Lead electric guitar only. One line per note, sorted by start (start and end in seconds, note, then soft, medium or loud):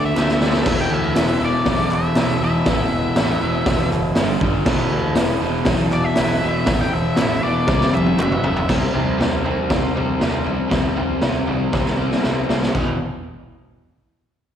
0.05 0.77 E5 loud
0.81 0.92 G5 medium
0.94 1.41 E5 medium
1.45 1.91 D5 medium
1.95 2.41 E5 loud
2.44 3.89 E5 loud
5.93 6.04 D5 loud
6.04 6.77 E5 loud
6.81 6.93 G5 medium
6.93 7.42 E5 medium
7.43 7.92 D5 medium
7.94 8.43 E5 loud
8.45 8.69 E5 loud